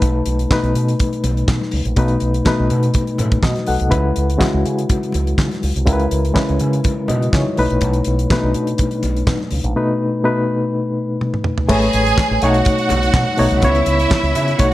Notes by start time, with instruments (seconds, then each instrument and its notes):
Already playing: reed electric piano B2 A3 D#4 B4 A5
0.02 fingered electric bass B1, kick, closed hi-hat, muted conga
0.26 fingered electric bass B1, closed hi-hat, muted conga
0.39 closed hi-hat
0.50 reed electric piano B2 A3 D#4 B4, kick, snare, clap, high conga
0.63 fingered electric bass B1, closed hi-hat
0.75 fingered electric bass B2, closed hi-hat
0.88 closed hi-hat
1.00 kick, closed hi-hat, muted conga
1.13 closed hi-hat
1.24 fingered electric bass B1, closed hi-hat, muted conga
1.37 closed hi-hat
1.48 fingered electric bass B2, kick, snare, clap, high conga
1.61 snare, high conga
1.71 fingered electric bass C#2, open hi-hat
1.85 fingered electric bass A#1, closed hi-hat
1.96 fingered electric bass B1, reed electric piano B2 A3 D#4 B4, kick, closed hi-hat, muted conga
2.08 closed hi-hat
2.20 fingered electric bass B1, closed hi-hat
2.34 closed hi-hat
2.45 reed electric piano B2 A3 D#4 B4, kick, snare, clap, high conga
2.60 fingered electric bass B1
2.70 fingered electric bass B2, closed hi-hat, low conga
2.83 closed hi-hat
2.94 kick, closed hi-hat, muted conga
3.07 closed hi-hat
3.18 fingered electric bass A2, closed hi-hat, muted conga, low conga
3.32 kick, closed hi-hat
3.43 fingered electric bass B2, reed electric piano F#4 D#5, kick, snare, clap, high conga
3.56 snare, closed hi-hat, high conga
3.67 fingered electric bass B1, reed electric piano A4 F#5, open hi-hat
3.80 fingered electric bass C2, closed hi-hat
3.89 fingered electric bass C#2, reed electric piano C#3 G#3 E4 B4, kick, closed hi-hat, muted conga
4.16 fingered electric bass C#2, closed hi-hat
4.30 closed hi-hat
4.38 reed electric piano C#3 G#3 E4 F#4, kick, snare, clap, high conga
4.54 fingered electric bass C#2
4.65 fingered electric bass C#3, closed hi-hat
4.78 closed hi-hat
4.89 kick, closed hi-hat, muted conga
5.03 closed hi-hat
5.12 fingered electric bass C#2, closed hi-hat, muted conga
5.27 closed hi-hat
5.38 fingered electric bass C#3, kick, snare, clap, high conga
5.51 snare, closed hi-hat, high conga
5.63 fingered electric bass C#2, open hi-hat
5.76 fingered electric bass C2, closed hi-hat
5.86 fingered electric bass C#2, reed electric piano C#3 G#3 E4 A#4, kick, closed hi-hat, muted conga
5.93 reed electric piano B4
6.00 closed hi-hat
6.11 fingered electric bass C#2, closed hi-hat
6.25 closed hi-hat
6.34 reed electric piano C#3 G#3 E4 B4, kick, snare, clap, high conga
6.49 fingered electric bass C#2, closed hi-hat
6.59 fingered electric bass C#3, closed hi-hat, low conga
6.73 closed hi-hat
6.84 kick, closed hi-hat, muted conga
7.08 fingered electric bass B2, reed electric piano F#4 D#5, closed hi-hat, muted conga, low conga
7.22 closed hi-hat
7.33 fingered electric bass C#3, reed electric piano E4 C#5, kick, snare, clap, high conga
7.46 high conga
7.57 fingered electric bass B1, reed electric piano B2 A3 D#4 B4, open hi-hat
7.70 fingered electric bass A#1, closed hi-hat
7.81 fingered electric bass B1, kick, closed hi-hat, muted conga
7.93 closed hi-hat
8.04 fingered electric bass B1, closed hi-hat, muted conga
8.19 closed hi-hat
8.30 reed electric piano B2 A3 D4 B4, kick, snare, clap, high conga
8.37 reed electric piano D#4
8.43 fingered electric bass B1
8.54 fingered electric bass B2, closed hi-hat
8.67 closed hi-hat
8.78 kick, closed hi-hat, muted conga
8.91 closed hi-hat
9.03 fingered electric bass B1, closed hi-hat, muted conga
9.17 closed hi-hat
9.27 fingered electric bass B2, kick, snare, clap, high conga
9.40 snare, high conga
9.51 fingered electric bass C#2, open hi-hat
9.64 fingered electric bass A#1, closed hi-hat
9.76 reed electric piano B2 A3 D#4 B4
10.23 reed electric piano B2 A3 D#4 B4
11.21 high tom
11.34 mid tom
11.44 mid tom
11.58 floor tom
11.69 fingered electric bass A1, reed electric piano A3 G#4 B4 C#5, string section G#4 G#5, kick, crash, muted conga
11.82 closed hi-hat
11.93 fingered electric bass A1, closed hi-hat, muted conga
12.06 closed hi-hat
12.18 kick, snare, clap, high conga
12.31 fingered electric bass A1
12.42 fingered electric bass B1, reed electric piano B2 A3 D#4 C#5, string section F#4 F#5, closed hi-hat
12.54 closed hi-hat
12.65 kick, closed hi-hat, muted conga
12.78 closed hi-hat
12.89 fingered electric bass B1, closed hi-hat, muted conga, low conga
13.03 closed hi-hat
13.13 fingered electric bass B2, kick, snare, clap, high conga
13.28 high conga
13.37 fingered electric bass B1, reed electric piano B2 A3 D#4 C#5, open hi-hat
13.51 fingered electric bass C2, closed hi-hat, high conga
13.62 fingered electric bass C#2, reed electric piano C#3 B3 E4 C#5, string section E4 E5, kick, closed hi-hat, muted conga
13.75 closed hi-hat
13.86 fingered electric bass C#2, closed hi-hat, muted conga
14.00 closed hi-hat
14.10 kick, snare, clap, high conga
14.23 fingered electric bass C#2, closed hi-hat
14.35 fingered electric bass C#3, closed hi-hat, low conga
14.48 closed hi-hat
14.58 fingered electric bass B1, reed electric piano B2 A3 D#4 C#5, string section F#4 F#5, kick, closed hi-hat, muted conga